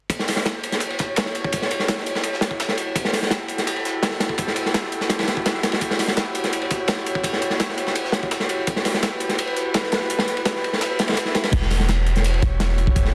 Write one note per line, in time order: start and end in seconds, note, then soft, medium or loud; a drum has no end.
0.10 11.49 E4 medium
0.10 11.49 F#4 medium
0.10 11.49 G4 medium
0.10 2.95 C#5 medium
0.10 kick medium
0.10 closed hi-hat medium
0.10 ride medium
0.19 snare soft
0.28 snare soft
0.28 open hi-hat medium
0.28 ride medium
0.36 snare soft
0.46 snare loud
0.46 closed hi-hat medium
0.46 ride medium
0.64 closed hi-hat medium
0.64 ride medium
0.72 snare soft
0.72 closed hi-hat soft
0.80 closed hi-hat medium
0.80 ride medium
0.90 ride soft
0.99 kick medium
0.99 snare soft
0.99 closed hi-hat medium
0.99 ride medium
1.16 snare loud
1.16 closed hi-hat medium
1.16 ride medium
1.26 snare soft
1.35 closed hi-hat medium
1.35 ride medium
1.44 kick medium
1.52 kick loud
1.52 closed hi-hat medium
1.52 ride medium
1.62 snare soft
1.71 closed hi-hat medium
1.71 ride medium
1.79 snare soft
1.88 snare loud
1.88 closed hi-hat medium
1.88 ride medium
1.97 snare soft
2.06 closed hi-hat medium
2.06 ride medium
2.15 snare soft
2.23 closed hi-hat medium
2.23 ride medium
2.33 snare soft
2.41 snare medium
2.41 closed hi-hat medium
2.41 ride medium
2.51 kick medium
2.60 snare loud
2.60 closed hi-hat medium
2.60 ride medium
2.68 snare soft
2.77 closed hi-hat medium
2.77 ride medium
2.96 5.80 A4 medium
2.96 kick loud
2.96 closed hi-hat medium
2.96 ride medium
3.05 snare soft
3.13 snare soft
3.13 open hi-hat medium
3.13 ride medium
3.22 snare soft
3.31 snare loud
3.31 closed hi-hat medium
3.31 ride medium
3.48 closed hi-hat medium
3.48 ride medium
3.58 snare soft
3.58 closed hi-hat soft
3.67 closed hi-hat medium
3.67 ride medium
3.76 ride soft
3.85 snare soft
3.85 closed hi-hat medium
4.03 snare medium
4.03 snare loud
4.03 closed hi-hat medium
4.03 ride medium
4.11 snare soft
4.20 snare medium
4.20 closed hi-hat medium
4.20 ride medium
4.29 kick medium
4.38 kick loud
4.38 closed hi-hat medium
4.38 ride medium
4.47 snare soft
4.56 closed hi-hat medium
4.56 ride medium
4.66 snare soft
4.74 snare loud
4.74 closed hi-hat medium
4.74 ride medium
4.83 snare soft
4.92 closed hi-hat medium
4.92 ride medium
5.01 snare soft
5.09 snare medium
5.09 closed hi-hat medium
5.09 ride medium
5.19 snare soft
5.19 snare medium
5.19 ride medium
5.23 snare medium
5.23 ride medium
5.28 snare loud
5.28 closed hi-hat medium
5.28 ride medium
5.37 kick medium
5.46 snare loud
5.46 snare medium
5.46 closed hi-hat medium
5.46 ride medium
5.54 snare soft
5.63 snare medium
5.63 closed hi-hat medium
5.63 ride medium
5.72 snare medium
5.72 ride medium
5.81 8.66 C#5 medium
5.81 kick medium
5.81 closed hi-hat medium
5.81 ride medium
5.91 snare medium
5.99 snare soft
5.99 open hi-hat medium
5.99 ride medium
6.08 snare medium
6.17 snare loud
6.17 closed hi-hat medium
6.17 ride medium
6.35 closed hi-hat medium
6.35 ride medium
6.44 snare soft
6.44 closed hi-hat soft
6.53 closed hi-hat medium
6.53 ride medium
6.62 ride soft
6.70 kick medium
6.70 snare soft
6.70 closed hi-hat medium
6.70 ride medium
6.88 snare loud
6.88 closed hi-hat medium
6.88 ride medium
6.97 snare soft
7.06 closed hi-hat medium
7.06 ride medium
7.15 kick medium
7.24 kick medium
7.24 closed hi-hat medium
7.24 ride medium
7.33 snare soft
7.42 closed hi-hat medium
7.42 ride medium
7.50 snare soft
7.60 snare loud
7.60 closed hi-hat medium
7.60 ride medium
7.69 snare soft
7.78 closed hi-hat medium
7.78 ride medium
7.87 snare soft
7.95 closed hi-hat medium
7.95 ride medium
8.05 snare soft
8.12 snare loud
8.12 closed hi-hat medium
8.12 ride medium
8.23 kick loud
8.31 snare loud
8.31 closed hi-hat medium
8.31 ride medium
8.40 snare soft
8.49 closed hi-hat medium
8.49 ride medium
8.67 11.52 B4 medium
8.67 kick loud
8.67 closed hi-hat medium
8.67 ride medium
8.76 snare soft
8.85 snare medium
8.85 open hi-hat medium
8.85 ride medium
8.94 snare medium
9.03 snare loud
9.03 closed hi-hat medium
9.03 ride medium
9.20 closed hi-hat medium
9.20 ride medium
9.29 snare soft
9.29 closed hi-hat soft
9.39 closed hi-hat medium
9.39 ride medium
9.47 ride soft
9.57 snare soft
9.57 closed hi-hat medium
9.74 snare loud
9.74 closed hi-hat medium
9.74 ride medium
9.83 snare soft
9.92 snare medium
9.92 closed hi-hat medium
9.92 ride medium
10.01 snare soft
10.10 closed hi-hat medium
10.10 ride medium
10.19 snare medium
10.19 ride medium
10.27 snare soft
10.27 closed hi-hat medium
10.37 ride medium
10.45 snare loud
10.45 closed hi-hat medium
10.45 ride medium
10.55 snare soft
10.64 ride medium
10.73 snare soft
10.81 snare loud
10.81 closed hi-hat medium
10.81 ride medium
10.81 swell medium
10.99 snare medium
10.99 closed hi-hat medium
10.99 ride medium
11.08 snare medium
11.08 ride medium
11.13 snare medium
11.13 ride medium
11.17 snare loud
11.17 closed hi-hat medium
11.17 ride medium
11.25 snare soft
11.35 snare loud
11.35 closed hi-hat medium
11.35 ride medium
11.44 snare loud
11.44 ride medium
11.53 12.41 E1 medium
11.53 13.14 E4 medium
11.53 13.14 F#4 medium
11.53 13.14 G4 medium
11.53 13.14 C#5 loud
11.53 kick loud
11.53 closed hi-hat medium
11.53 crash medium
11.53 ride medium
11.62 snare medium
11.71 snare medium
11.71 open hi-hat medium
11.71 ride medium
11.80 snare medium
11.89 snare loud
11.89 closed hi-hat medium
11.89 ride medium
12.06 closed hi-hat medium
12.06 ride medium
12.16 snare soft
12.16 closed hi-hat soft
12.24 closed hi-hat medium
12.24 ride medium
12.34 ride soft
12.42 13.12 E1 loud
12.42 kick medium
12.42 snare soft
12.42 closed hi-hat medium
12.42 ride medium
12.60 snare loud
12.60 closed hi-hat medium
12.60 ride medium
12.69 snare soft
12.78 closed hi-hat medium
12.78 ride medium
12.87 kick medium
12.96 kick loud
12.96 closed hi-hat loud
12.96 ride medium
13.05 snare soft